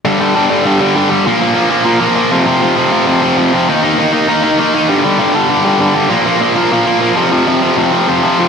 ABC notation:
X:1
M:4/4
L:1/8
Q:1/4=198
K:Gm
V:1 name="Distorted electric guitar" clef=bass
[G,,D,G,] [G,,D,G,] [G,,D,G,] [G,,D,G,] [G,,D,G,] [G,,D,G,] [G,,D,G,] [G,,D,G,] | [B,,F,B,] [B,,F,B,] [B,,F,B,] [B,,F,B,] [B,,F,B,] [B,,F,B,] [B,,F,B,] [F,,C,F,] | [F,,C,F,] [F,,C,F,] [F,,C,F,] [F,,C,F,] [F,,C,F,] [F,,C,F,] [F,,C,F,] [F,,C,F,] | [E,B,E] [E,B,E] [E,B,E] [E,B,E] [E,B,E] [E,B,E] [E,B,E] [E,B,E] |
[G,,D,G,] [G,,D,G,] [G,,D,G,] [G,,D,G,] [G,,D,G,] [G,,D,G,] [G,,D,G,] [G,,D,G,] | [B,,F,B,] [B,,F,B,] [B,,F,B,] [B,,F,B,] [B,,F,B,] [B,,F,B,] [B,,F,B,] [F,,C,F,] | [F,,C,F,] [F,,C,F,] [F,,C,F,] [F,,C,F,] [F,,C,F,] [F,,C,F,] [F,,C,F,] [F,,C,F,] |]